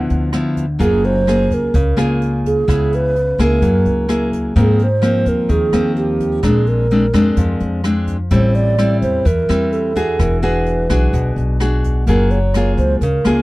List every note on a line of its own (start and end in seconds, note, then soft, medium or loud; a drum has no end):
0.00 0.77 D3 medium
0.00 0.29 F3 medium
0.00 0.29 B3 medium
0.00 0.30 E4 medium
0.10 0.76 D2 medium
0.10 closed hi-hat soft
0.32 0.64 F3 medium
0.32 0.65 B3 medium
0.32 0.65 E4 medium
0.32 cross-stick medium
0.32 closed hi-hat soft
0.56 kick soft
0.56 closed hi-hat soft
0.79 1.47 F#1 medium
0.79 1.71 F#3 medium
0.79 1.23 A#3 medium
0.79 1.23 F4 medium
0.79 1.23 G#4 medium
0.79 1.06 G#4 loud
0.79 kick medium
0.79 closed hi-hat medium
1.04 1.55 C5 loud
1.04 closed hi-hat soft
1.27 1.74 A#3 medium
1.27 1.74 F4 medium
1.27 1.74 G#4 medium
1.27 cross-stick medium
1.27 closed hi-hat soft
1.51 1.72 C#2 medium
1.51 2.22 A#4 medium
1.51 kick soft
1.51 closed hi-hat soft
1.74 1.96 C#2 loud
1.74 2.66 C#3 medium
1.74 kick medium
1.74 closed hi-hat medium
1.97 2.64 C#2 medium
1.97 2.64 A#3 medium
1.97 2.64 F4 medium
1.97 2.64 G#4 medium
1.97 cross-stick medium
1.97 closed hi-hat soft
2.22 closed hi-hat soft
2.45 2.96 G#4 medium
2.45 kick soft
2.45 closed hi-hat soft
2.68 3.34 C#2 medium
2.68 3.59 C#3 medium
2.68 3.14 B3 medium
2.68 3.14 E4 medium
2.68 3.15 G#4 medium
2.68 kick medium
2.68 cross-stick medium
2.68 closed hi-hat medium
2.92 3.40 B4 loud
2.92 closed hi-hat soft
3.16 closed hi-hat soft
3.38 3.60 C#2 medium
3.38 4.05 A#3 medium
3.38 4.06 E4 medium
3.38 4.06 G#4 medium
3.38 4.30 A#4 medium
3.38 kick soft
3.38 cross-stick medium
3.38 closed hi-hat soft
3.62 3.84 F#2 medium
3.62 4.53 F#3 medium
3.62 kick medium
3.62 closed hi-hat medium
3.85 4.52 C#2 medium
3.85 closed hi-hat soft
4.09 4.54 A#3 medium
4.09 4.54 E4 medium
4.09 4.54 G#4 medium
4.09 cross-stick medium
4.09 closed hi-hat soft
4.32 kick soft
4.32 closed hi-hat soft
4.56 5.47 G#2 medium
4.56 5.22 G#2 medium
4.56 4.86 F3 medium
4.56 4.86 A#3 medium
4.56 4.86 C4 medium
4.56 kick medium
4.56 closed hi-hat medium
4.60 4.85 G#4 medium
4.79 closed hi-hat soft
4.83 5.30 C5 medium
5.02 5.69 F3 medium
5.02 5.69 A#3 medium
5.02 5.69 C4 medium
5.02 cross-stick medium
5.02 closed hi-hat soft
5.26 5.48 D#2 medium
5.26 5.52 A#4 medium
5.26 kick soft
5.26 closed hi-hat soft
5.49 5.71 D#2 medium
5.49 6.41 D#3 medium
5.49 5.96 G#4 medium
5.49 kick medium
5.49 closed hi-hat soft
5.73 6.39 D#2 medium
5.73 6.40 F3 medium
5.73 6.40 A#3 medium
5.73 6.40 C4 medium
5.73 cross-stick medium
5.73 closed hi-hat soft
5.96 6.45 G4 medium
5.96 closed hi-hat soft
6.20 kick soft
6.20 closed hi-hat soft
6.43 7.10 A#1 medium
6.43 7.35 A#2 medium
6.43 6.86 G#3 medium
6.43 6.86 C4 medium
6.43 6.87 D4 medium
6.43 6.70 G#4 medium
6.43 kick medium
6.43 cross-stick medium
6.43 closed hi-hat medium
6.67 7.61 A#4 medium
6.67 closed hi-hat soft
6.91 7.05 G#3 medium
6.91 7.05 C4 medium
6.91 7.05 D4 medium
6.91 closed hi-hat soft
7.14 7.36 F2 medium
7.14 7.80 G#3 medium
7.14 7.81 C4 medium
7.14 7.81 D4 medium
7.14 kick soft
7.14 cross-stick medium
7.14 closed hi-hat soft
7.37 7.59 F2 medium
7.37 8.29 F3 medium
7.37 kick medium
7.37 closed hi-hat medium
7.60 8.27 F2 medium
7.60 closed hi-hat soft
7.84 8.16 G#3 medium
7.84 8.16 C4 medium
7.84 8.16 D4 medium
7.84 cross-stick medium
7.84 closed hi-hat soft
8.07 kick soft
8.07 closed hi-hat soft
8.30 8.98 A1 loud
8.30 9.23 A2 medium
8.30 8.74 G3 medium
8.30 8.74 C4 medium
8.30 8.75 E4 medium
8.30 8.57 C5 medium
8.30 kick medium
8.30 closed hi-hat medium
8.54 9.01 D5 loud
8.54 closed hi-hat soft
8.78 9.25 G3 medium
8.78 9.25 C4 medium
8.78 9.25 E4 medium
8.78 cross-stick medium
8.78 closed hi-hat soft
9.02 9.24 E2 medium
9.02 9.28 C5 loud
9.02 kick soft
9.02 closed hi-hat soft
9.25 9.47 E2 medium
9.25 10.17 E3 medium
9.25 9.74 A#4 loud
9.25 kick medium
9.25 closed hi-hat medium
9.49 10.15 E2 medium
9.49 9.92 G3 medium
9.49 9.92 C4 medium
9.49 9.92 E4 medium
9.49 cross-stick medium
9.49 closed hi-hat soft
9.72 10.21 A4 medium
9.72 closed hi-hat soft
9.96 10.39 D4 medium
9.96 10.39 F#4 medium
9.96 10.39 G#4 medium
9.96 kick soft
9.96 closed hi-hat soft
10.19 10.86 E1 medium
10.19 11.11 E3 medium
10.19 10.42 A#4 medium
10.19 kick medium
10.19 cross-stick medium
10.19 closed hi-hat soft
10.42 10.86 D4 medium
10.42 10.86 F#4 medium
10.42 10.86 G#4 medium
10.42 11.33 B4 medium
10.42 closed hi-hat soft
10.66 closed hi-hat soft
10.90 11.12 B1 medium
10.90 11.57 D4 medium
10.90 11.57 F#4 medium
10.90 11.57 G#4 medium
10.90 kick soft
10.90 cross-stick medium
10.90 closed hi-hat soft
11.13 11.35 B1 medium
11.13 12.05 B2 medium
11.13 kick medium
11.13 closed hi-hat medium
11.36 12.03 B1 medium
11.36 closed hi-hat soft
11.60 12.04 D4 soft
11.60 12.04 F#4 medium
11.60 12.04 G#4 medium
11.60 cross-stick medium
11.60 closed hi-hat soft
11.84 kick soft
11.84 closed hi-hat soft
12.07 12.74 F#1 medium
12.07 13.00 F#3 medium
12.07 12.38 A#3 medium
12.07 12.38 F4 medium
12.07 12.38 G#4 medium
12.07 12.32 A#4 medium
12.07 kick medium
12.07 closed hi-hat medium
12.30 12.76 C#5 medium
12.30 closed hi-hat soft
12.54 13.02 A#3 medium
12.54 13.02 F4 medium
12.54 13.02 G#4 medium
12.54 cross-stick medium
12.54 closed hi-hat soft
12.77 12.99 C#2 medium
12.77 12.99 C5 medium
12.77 kick soft
12.77 closed hi-hat soft
13.01 13.23 C#2 medium
13.01 13.42 C#3 medium
13.01 13.42 A#4 medium
13.01 kick medium
13.01 closed hi-hat medium
13.24 13.42 C#2 medium
13.24 13.42 A#3 medium
13.24 13.42 F4 medium
13.24 13.42 G#4 medium
13.24 cross-stick medium
13.24 closed hi-hat soft